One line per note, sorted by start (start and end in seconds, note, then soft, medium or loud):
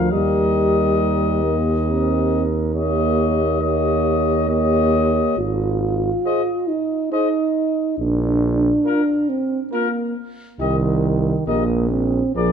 0.00 0.14 F3 medium
0.00 0.11 F4 soft
0.00 0.11 A#4 soft
0.00 0.11 F5 soft
0.12 5.21 D#2 soft
0.12 1.43 G3 medium
0.12 2.42 G4 soft
0.12 1.56 A#4 soft
0.12 2.42 D#5 soft
1.43 1.74 A#3 soft
1.87 2.46 C4 soft
1.87 2.71 A#4 soft
2.74 3.57 A#3 medium
2.74 3.58 G4 soft
2.74 3.60 C#5 soft
2.74 3.58 D#5 soft
3.61 4.47 A#3 medium
3.61 4.47 G4 soft
3.61 4.46 C#5 soft
3.61 4.47 D#5 soft
4.48 5.36 A#3 medium
4.48 5.37 G4 soft
4.48 5.36 C#5 soft
4.48 5.36 D#5 soft
5.38 6.11 G#1 soft
5.38 6.70 F4 medium
6.25 6.42 G#4 soft
6.25 6.41 C5 soft
6.25 6.42 D#5 soft
6.68 7.12 D#4 medium
7.12 7.98 D#4 medium
7.12 7.28 G#4 soft
7.12 7.28 C5 soft
7.12 7.28 D#5 soft
7.99 8.72 A#1 medium
7.99 9.31 D4 medium
8.85 9.02 F4 soft
8.85 9.01 A#4 soft
8.85 9.02 A#4 soft
9.29 9.60 C4 medium
9.71 10.15 A#3 medium
9.71 9.88 F4 soft
9.71 9.87 A#4 soft
9.71 9.89 A#4 soft
10.59 11.33 C2 medium
10.59 11.44 D#3 medium
10.59 10.75 D#4 soft
10.59 10.76 G4 soft
10.59 10.77 D#5 soft
11.47 12.21 A#1 soft
11.47 11.90 A#3 medium
11.47 11.63 G4 soft
11.47 11.63 A#4 soft
11.47 11.63 D#5 soft
11.91 12.35 C4 medium
12.35 12.52 A#1 soft
12.35 12.52 F3 medium
12.35 12.52 G#4 soft
12.35 12.52 A#4 soft
12.35 12.52 D5 soft